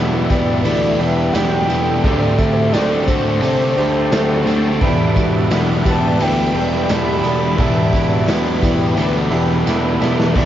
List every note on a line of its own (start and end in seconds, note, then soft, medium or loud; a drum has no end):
0.00 0.26 E1 medium
0.00 0.63 E2 medium
0.00 0.97 E2 loud
0.00 0.31 B2 medium
0.00 0.97 B2 loud
0.00 0.28 E3 medium
0.00 0.29 E3 medium
0.00 0.97 E3 loud
0.00 0.30 G3 medium
0.00 0.99 G3 loud
0.00 0.29 B3 medium
0.00 0.99 D4 loud
0.00 0.29 E4 loud
0.00 0.98 G4 loud
0.00 2.01 B4 medium
0.00 4.76 D5 medium
0.00 2.01 E5 medium
0.00 10.32 D6 medium
0.29 0.61 E1 loud
0.29 0.64 B2 medium
0.29 0.63 E3 medium
0.29 0.65 E3 medium
0.29 0.64 G3 medium
0.29 0.64 B3 medium
0.29 0.64 E4 medium
0.29 0.65 G4 medium
0.29 0.62 D5 loud
0.29 kick medium
0.29 open hi-hat medium
0.29 tambourine medium
0.64 0.95 D2 medium
0.64 1.33 E2 medium
0.64 1.34 B2 medium
0.64 1.32 E3 medium
0.64 1.34 E3 loud
0.64 1.33 G3 loud
0.64 1.33 B3 medium
0.64 1.33 E4 loud
0.64 1.00 A4 loud
0.64 1.02 D5 loud
0.64 open hi-hat medium
0.64 tambourine medium
0.98 1.30 E1 medium
0.98 1.32 E2 medium
0.98 1.33 B2 medium
0.98 1.33 E3 medium
0.98 1.35 G3 medium
0.98 1.35 D4 medium
0.98 1.36 G4 medium
0.98 1.70 G4 medium
0.98 1.35 E5 loud
0.98 open hi-hat medium
1.33 1.65 E1 loud
1.33 2.01 E2 medium
1.33 2.01 B2 medium
1.33 2.02 B2 medium
1.33 1.68 E3 medium
1.33 2.02 E3 medium
1.33 1.69 G3 medium
1.33 2.04 G3 medium
1.33 1.68 B3 loud
1.33 2.05 D4 medium
1.33 1.68 E4 medium
1.33 2.06 G4 medium
1.33 2.06 G5 loud
1.33 snare loud
1.33 open hi-hat medium
1.33 tambourine loud
1.68 1.99 E1 medium
1.68 2.02 E3 medium
1.68 2.04 G3 medium
1.68 2.02 B3 loud
1.68 2.02 E4 loud
1.68 2.03 A4 medium
1.68 open hi-hat medium
1.68 tambourine medium
2.03 2.35 D2 medium
2.03 3.75 D3 loud
2.03 2.72 D3 loud
2.03 2.72 A3 loud
2.03 3.75 A3 loud
2.03 2.73 A3 loud
2.03 2.72 C4 medium
2.03 3.76 C4 loud
2.03 2.75 D4 loud
2.03 3.76 G4 loud
2.03 2.39 A4 medium
2.03 4.79 C5 medium
2.03 2.40 D5 loud
2.03 4.79 A5 medium
2.03 kick loud
2.03 open hi-hat medium
2.39 2.69 D2 loud
2.39 2.75 E5 loud
2.39 kick medium
2.39 open hi-hat medium
2.39 tambourine medium
2.73 3.04 D2 medium
2.73 3.07 D3 medium
2.73 3.40 D3 medium
2.73 3.07 A3 medium
2.73 3.08 A3 medium
2.73 3.08 C4 medium
2.73 3.07 D4 medium
2.73 3.08 F#4 medium
2.73 3.09 D5 medium
2.73 snare loud
2.73 open hi-hat medium
2.73 tambourine loud
3.07 3.39 D2 medium
3.07 3.42 D3 medium
3.07 3.42 A3 medium
3.07 3.43 C4 medium
3.07 3.43 D4 medium
3.07 3.47 F#4 medium
3.07 3.41 A4 medium
3.07 4.46 C5 loud
3.07 kick medium
3.07 open hi-hat medium
3.07 tambourine medium
3.42 3.73 C3 medium
3.42 4.11 D3 loud
3.42 4.11 A3 loud
3.42 4.12 A3 medium
3.42 4.12 C4 medium
3.42 4.14 D4 loud
3.42 3.76 A4 loud
3.42 open hi-hat medium
3.42 tambourine medium
3.76 4.08 D2 medium
3.76 4.10 D3 medium
3.76 4.11 A3 medium
3.76 4.10 C4 medium
3.76 4.14 G4 medium
3.76 4.45 A4 medium
3.76 open hi-hat medium
4.11 4.43 D2 loud
4.11 4.79 D3 medium
4.11 4.46 D3 medium
4.11 4.79 A3 medium
4.11 4.46 A3 medium
4.11 4.46 C4 medium
4.11 4.80 C4 medium
4.11 4.84 D4 loud
4.11 4.47 F#4 medium
4.11 4.84 G4 medium
4.11 snare loud
4.11 open hi-hat medium
4.11 tambourine loud
4.46 4.77 D2 medium
4.46 4.79 D3 medium
4.46 4.79 A3 loud
4.46 4.80 C4 loud
4.46 4.80 F#4 medium
4.46 4.80 A4 medium
4.46 open hi-hat medium
4.46 tambourine medium
4.81 5.12 E1 loud
4.81 6.57 E2 medium
4.81 5.50 E2 loud
4.81 6.53 B2 loud
4.81 5.50 B2 loud
4.81 5.50 E3 loud
4.81 6.56 E3 loud
4.81 5.52 E3 loud
4.81 5.51 G3 loud
4.81 6.55 G3 loud
4.81 5.51 B3 loud
4.81 6.54 D4 loud
4.81 5.51 E4 loud
4.81 6.54 E4 loud
4.81 6.19 B4 loud
4.81 7.56 B4 medium
4.81 10.32 D5 medium
4.81 10.33 E5 medium
4.81 kick loud
4.81 open hi-hat medium
5.16 5.47 E1 loud
5.16 5.85 F#4 medium
5.16 kick medium
5.16 open hi-hat medium
5.16 tambourine medium
5.50 5.81 E1 loud
5.50 6.19 E2 medium
5.50 5.86 B2 medium
5.50 5.85 E3 medium
5.50 5.85 G3 medium
5.50 5.86 B3 medium
5.50 5.86 E4 medium
5.50 snare loud
5.50 open hi-hat medium
5.50 tambourine loud
5.85 6.16 E1 loud
5.85 6.19 B2 medium
5.85 6.20 E3 medium
5.85 6.21 E3 medium
5.85 6.20 G3 medium
5.85 6.21 B3 medium
5.85 6.21 E4 medium
5.85 6.23 G4 medium
5.85 6.23 A5 loud
5.85 kick medium
5.85 open hi-hat medium
5.85 tambourine medium
6.19 6.51 D2 medium
6.19 6.88 E2 medium
6.19 6.89 B2 medium
6.19 6.89 E3 medium
6.19 6.90 E3 loud
6.19 6.90 G3 medium
6.19 6.90 B3 loud
6.19 6.90 E4 loud
6.19 6.54 A4 loud
6.19 6.92 G5 loud
6.19 open hi-hat medium
6.19 tambourine medium
6.54 6.85 E1 medium
6.54 6.88 E2 medium
6.54 6.88 B2 medium
6.54 6.90 E3 medium
6.54 6.90 G3 medium
6.54 6.91 D4 medium
6.54 6.91 E4 medium
6.54 7.28 G4 medium
6.54 open hi-hat medium
6.73 snare soft
6.88 7.20 E1 loud
6.88 7.57 E2 medium
6.88 7.57 B2 medium
6.88 7.23 E3 medium
6.88 7.59 E3 medium
6.88 7.24 G3 medium
6.88 7.59 G3 medium
6.88 7.24 B3 medium
6.88 7.60 D4 medium
6.88 7.24 E4 medium
6.88 7.60 E4 medium
6.88 7.62 B5 loud
6.88 snare loud
6.88 open hi-hat medium
6.88 tambourine loud
7.24 7.58 E1 medium
7.24 7.59 E3 loud
7.24 7.59 G3 medium
7.24 7.59 B3 medium
7.24 7.60 E4 medium
7.24 7.59 A4 medium
7.24 open hi-hat medium
7.24 tambourine medium
7.58 7.89 E1 loud
7.58 9.29 E2 medium
7.58 8.26 E2 medium
7.58 9.30 B2 loud
7.58 8.27 B2 loud
7.58 9.30 E3 loud
7.58 8.26 E3 loud
7.58 8.28 E3 loud
7.58 8.27 G3 loud
7.58 9.30 G3 loud
7.58 8.27 B3 medium
7.58 9.30 D4 loud
7.58 8.28 E4 loud
7.58 9.29 E4 loud
7.58 7.93 B4 medium
7.58 10.34 B4 medium
7.58 8.29 E5 medium
7.58 kick loud
7.58 open hi-hat medium
7.58 tambourine soft
7.93 8.24 E1 loud
7.93 8.62 F#4 medium
7.93 kick medium
7.93 open hi-hat medium
7.93 tambourine medium
8.27 8.58 E1 medium
8.27 8.95 E2 medium
8.27 8.62 B2 medium
8.27 8.61 E3 medium
8.27 8.62 G3 medium
8.27 8.62 B3 medium
8.27 8.62 E4 medium
8.27 snare loud
8.27 open hi-hat medium
8.27 tambourine medium
8.62 8.93 E1 loud
8.62 8.97 B2 medium
8.62 8.97 E3 medium
8.62 8.96 E3 medium
8.62 8.97 G3 medium
8.62 8.97 B3 medium
8.62 8.97 E4 medium
8.62 8.97 G4 medium
8.62 kick medium
8.62 open hi-hat medium
8.62 tambourine medium
8.97 9.28 D2 medium
8.97 9.65 E2 medium
8.97 9.66 B2 loud
8.97 9.64 E3 medium
8.97 9.67 E3 medium
8.97 9.65 G3 medium
8.97 9.65 B3 loud
8.97 9.65 E4 medium
8.97 9.32 A4 loud
8.97 open hi-hat medium
8.97 tambourine medium
9.31 9.63 E1 medium
9.31 9.64 E2 medium
9.31 9.65 B2 medium
9.31 9.65 E3 medium
9.31 9.65 G3 medium
9.31 9.64 D4 medium
9.31 9.64 E4 medium
9.31 10.01 G4 medium
9.31 open hi-hat medium
9.50 snare soft
9.65 9.97 E1 medium
9.65 10.33 E2 medium
9.65 10.34 E2 medium
9.65 10.34 B2 medium
9.65 10.00 E3 medium
9.65 10.34 E3 medium
9.65 10.00 G3 medium
9.65 10.34 G3 medium
9.65 10.00 B3 medium
9.65 10.35 D4 medium
9.65 10.01 E4 medium
9.65 10.35 E4 medium
9.65 snare medium
9.65 tambourine loud
10.01 10.32 E1 medium
10.01 10.34 E3 medium
10.01 10.34 G3 medium
10.01 10.34 B3 medium
10.01 10.34 E4 medium
10.01 10.35 A4 medium
10.01 snare medium
10.01 tambourine medium
10.20 snare medium
10.35 10.45 E1 loud
10.35 10.45 E2 loud
10.35 10.45 B2 loud
10.35 10.45 B2 medium
10.35 10.45 E3 loud
10.35 10.45 E3 medium
10.35 10.45 E3 loud
10.35 10.45 G3 loud
10.35 10.45 B3 loud
10.35 10.45 D4 loud
10.35 10.45 E4 loud
10.35 10.45 A4 medium
10.35 10.45 B4 medium
10.35 10.45 D5 medium
10.35 10.45 E5 medium
10.35 10.45 D6 medium
10.35 kick loud
10.35 crash loud